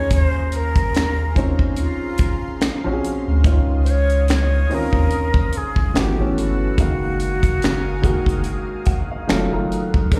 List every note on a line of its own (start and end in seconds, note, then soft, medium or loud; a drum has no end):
0.00 1.29 F3 medium
0.00 1.29 A#3 medium
0.00 1.30 C#4 medium
0.00 1.30 G#4 medium
0.00 3.41 G#4 medium
0.00 0.13 C#5 medium
0.00 5.91 F5 medium
0.00 3.41 A#5 medium
0.00 5.91 C6 medium
0.10 1.74 D#2 loud
0.10 0.58 C5 loud
0.10 kick loud
0.10 closed hi-hat medium
0.52 closed hi-hat medium
0.56 1.55 A#4 loud
0.75 kick medium
0.75 closed hi-hat soft
0.94 finger snap medium
0.94 snare loud
0.94 closed hi-hat medium
1.35 2.76 F3 medium
1.35 2.76 C4 medium
1.35 2.77 C#4 medium
1.35 2.77 D#4 medium
1.35 kick medium
1.35 closed hi-hat soft
1.59 kick medium
1.76 3.00 F4 medium
1.76 closed hi-hat medium
2.17 kick medium
2.17 closed hi-hat medium
2.61 2.72 A#1 soft
2.61 finger snap medium
2.61 snare loud
2.61 closed hi-hat medium
2.84 3.00 A#1 medium
2.84 3.41 F3 medium
2.84 3.42 C4 medium
2.84 3.42 C#4 medium
2.84 2.92 F#4 medium
2.93 3.46 G#4 medium
3.04 closed hi-hat medium
3.28 3.42 D2 medium
3.44 4.66 C#2 loud
3.44 4.64 D#3 medium
3.44 4.65 C#4 medium
3.44 4.64 D#4 medium
3.44 4.65 F4 medium
3.44 5.93 D#5 medium
3.44 5.92 D#6 medium
3.44 kick loud
3.44 closed hi-hat medium
3.84 3.92 C5 medium
3.84 closed hi-hat medium
3.90 4.30 C#5 medium
4.09 closed hi-hat soft
4.28 4.76 C#5 medium
4.28 finger snap medium
4.28 snare loud
4.28 closed hi-hat medium
4.69 4.80 D#2 soft
4.69 5.95 D#3 medium
4.69 5.95 C4 medium
4.69 5.95 C#4 medium
4.69 5.96 F4 medium
4.69 open hi-hat soft
4.74 5.59 A#4 loud
4.93 5.40 D#2 medium
4.93 kick medium
5.10 closed hi-hat medium
5.34 kick loud
5.52 5.64 C2 medium
5.52 closed hi-hat medium
5.57 6.01 G#4 medium
5.76 5.91 C2 medium
5.76 kick medium
5.94 6.14 G1 loud
5.94 6.17 E3 medium
5.94 6.17 A3 medium
5.94 6.18 B3 medium
5.94 6.18 F#4 medium
5.94 6.77 B4 medium
5.94 6.77 F#5 medium
5.94 6.77 A5 medium
5.94 6.77 E6 medium
5.94 finger snap medium
5.94 snare loud
5.94 closed hi-hat medium
5.99 6.41 G4 medium
6.18 6.33 A1 medium
6.18 6.75 E3 medium
6.18 6.76 A3 medium
6.18 6.76 B3 medium
6.18 6.76 C#4 medium
6.38 6.70 G1 medium
6.38 9.71 F#4 medium
6.38 closed hi-hat medium
6.78 8.41 F#1 medium
6.78 7.97 D#3 medium
6.78 7.97 G#3 medium
6.78 7.98 A#3 medium
6.78 9.26 A#4 medium
6.78 10.08 F5 medium
6.78 7.99 F5 medium
6.78 9.26 G#5 medium
6.78 10.08 D#6 medium
6.78 kick loud
6.78 closed hi-hat medium
7.20 closed hi-hat medium
7.43 kick medium
7.43 closed hi-hat medium
7.62 finger snap medium
7.62 snare loud
7.62 closed hi-hat medium
8.02 9.26 D#3 medium
8.02 9.28 G#3 medium
8.02 9.28 A#3 medium
8.02 9.29 F#4 medium
8.02 kick medium
8.02 closed hi-hat soft
8.26 kick medium
8.26 closed hi-hat soft
8.44 closed hi-hat medium
8.85 9.08 F#5 medium
8.85 kick medium
8.85 closed hi-hat medium
9.11 9.27 F5 medium
9.27 9.48 F1 loud
9.27 9.50 D#3 medium
9.27 9.50 F#3 medium
9.27 10.10 A3 medium
9.27 9.51 A3 medium
9.27 9.52 F4 loud
9.27 10.10 F#5 medium
9.27 9.51 A5 medium
9.27 finger snap medium
9.27 snare loud
9.27 closed hi-hat medium
9.51 9.67 F#1 medium
9.51 10.08 D#3 medium
9.51 10.09 F#3 medium
9.51 10.09 A3 medium
9.51 10.10 F4 medium
9.51 10.08 A#5 medium
9.72 closed hi-hat medium
9.94 10.08 B1 medium
9.94 kick medium
10.10 10.20 A#1 loud
10.10 10.20 C#3 medium
10.10 10.20 G#3 medium
10.10 10.20 C4 medium
10.10 10.20 G#4 medium
10.10 10.20 D#5 medium
10.10 10.20 G#5 medium
10.10 10.20 C6 medium
10.10 kick loud
10.10 closed hi-hat medium
10.14 10.20 D4 medium
10.14 10.20 A#4 loud